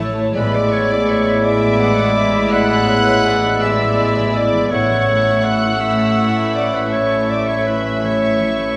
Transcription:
0.00 0.31 A1 medium
0.00 0.31 A2 medium
0.00 0.17 E3 medium
0.00 0.38 E3 soft
0.00 0.17 A3 medium
0.00 0.17 A3 soft
0.00 0.18 A3 medium
0.00 0.33 A3 medium
0.00 0.18 E4 medium
0.00 0.33 E4 medium
0.00 0.90 E4 medium
0.00 0.39 A4 medium
0.00 0.35 C#5 medium
0.00 0.19 E5 medium
0.00 1.42 E5 medium
0.00 0.35 A5 medium
0.00 0.39 A5 medium
0.18 0.39 A3 medium
0.34 4.68 A1 medium
0.34 4.68 A2 medium
0.34 4.26 A2 medium
0.34 4.67 E3 medium
0.34 4.67 G#3 medium
0.34 1.43 G#3 medium
0.34 4.68 B3 medium
0.34 4.67 E4 medium
0.34 1.42 E4 medium
0.34 0.57 B4 medium
0.34 1.43 D5 medium
0.34 4.68 E5 medium
0.34 4.74 B5 medium
0.34 0.54 B5 medium
0.54 3.80 E3 soft
0.54 0.74 D5 medium
0.54 0.72 D6 medium
0.71 3.61 B3 soft
0.71 0.94 C#5 medium
0.71 0.89 C#6 medium
0.88 3.43 E4 medium
0.88 1.07 D6 medium
0.93 1.12 D5 medium
1.07 3.25 G#4 medium
1.07 1.46 C#5 medium
1.07 1.43 C#6 medium
1.26 3.06 B4 medium
1.43 3.58 G#3 medium
1.43 3.58 E4 medium
1.43 2.54 D5 loud
1.43 1.78 E5 medium
1.43 1.79 E5 medium
1.43 2.49 D6 medium
1.62 1.97 G#5 medium
1.79 2.16 E5 medium
1.79 2.15 F#5 medium
1.99 2.33 G#5 medium
2.17 2.52 E5 medium
2.17 2.50 E5 medium
2.34 2.69 G#5 medium
2.51 2.88 D5 medium
2.51 2.87 E5 medium
2.51 3.64 F#5 loud
2.51 3.62 F#6 loud
2.71 4.75 G#5 medium
2.88 3.25 C#5 medium
2.88 5.80 E5 medium
3.07 4.75 B4 medium
3.25 4.75 G#4 medium
3.25 4.72 D5 medium
3.44 5.26 E4 medium
3.62 4.70 G#3 medium
3.62 3.97 B3 medium
3.62 4.70 E4 medium
3.62 4.36 E5 medium
3.62 4.36 E6 medium
3.81 4.16 E3 medium
3.99 4.33 B3 soft
4.17 4.53 E3 medium
4.35 4.74 B3 medium
4.35 4.73 D5 medium
4.35 4.73 D6 medium
4.54 4.75 E3 medium
4.71 8.77 A1 medium
4.71 8.62 A2 medium
4.71 8.77 A2 medium
4.71 8.77 E3 medium
4.71 5.79 A3 medium
4.71 8.77 A3 medium
4.71 8.77 C#4 medium
4.71 5.78 E4 medium
4.71 8.77 E4 medium
4.71 5.46 C#5 loud
4.71 8.77 E5 medium
4.71 6.88 F#5 medium
4.71 5.43 C#6 medium
4.71 8.77 C#6 medium
4.91 8.01 E3 soft
5.09 7.83 A3 soft
5.27 5.62 E4 soft
5.45 7.46 A4 soft
5.45 5.83 F#5 medium
5.45 5.80 F#6 medium
5.63 7.65 E4 soft
5.79 6.90 A3 medium
5.79 6.90 E4 medium
5.79 6.16 E5 medium
5.79 6.54 E5 medium
5.79 6.54 E6 medium
5.98 6.34 A5 medium
6.17 6.53 E5 medium
6.36 6.72 A5 medium
6.54 6.76 D5 medium
6.54 6.91 E5 medium
6.54 6.73 D6 medium
6.73 6.94 B4 medium
6.73 7.10 A5 medium
6.73 6.93 B5 medium
6.92 8.00 A3 medium
6.92 8.00 E4 medium
6.92 7.31 C#5 medium
6.92 7.28 E5 medium
6.92 8.77 E5 medium
6.92 7.29 C#6 medium
7.11 8.77 A5 medium
7.29 7.48 D5 medium
7.29 8.77 E5 medium
7.29 7.47 D6 medium
7.47 8.77 A4 medium
7.47 7.68 C#5 medium
7.47 7.65 C#6 medium
7.65 8.77 E4 medium
7.65 8.06 B4 medium
7.65 8.02 B5 medium
7.84 8.20 A3 medium
8.03 8.38 E3 soft
8.03 8.77 A3 medium
8.03 8.77 E4 medium
8.03 8.77 C#5 medium
8.03 8.77 C#6 medium
8.39 8.75 E3 medium
8.58 8.77 A3 soft

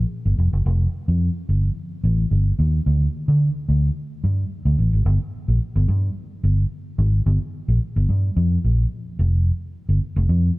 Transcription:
0.25 0.35 G1 medium
0.38 0.49 F1 medium
0.53 0.62 F#1 medium
0.66 0.86 F1 loud
1.08 1.28 F2 medium
1.49 1.69 G1 medium
2.04 2.24 A1 medium
2.31 2.51 G1 medium
2.59 2.79 D#2 medium
2.86 3.06 D2 medium
3.28 3.48 D3 medium
3.69 3.89 D2 medium
4.24 4.44 G2 medium
4.65 4.75 D2 medium
4.78 4.89 A1 medium
4.93 5.03 G#1 medium
5.06 5.17 G1 loud
5.48 5.58 A#1 medium
5.76 5.85 G1 loud
5.88 6.09 G2 loud
6.43 6.64 G1 medium
6.98 7.19 G#1 loud
7.26 7.37 G1 loud
7.68 7.78 A#1 medium
7.96 8.06 G1 loud
8.09 8.29 G2 medium
8.37 8.57 F2 loud
8.64 8.84 A#1 medium
9.19 9.50 F1 loud
9.89 9.98 G1 medium
10.16 10.26 F1 loud
10.29 10.49 F2 loud

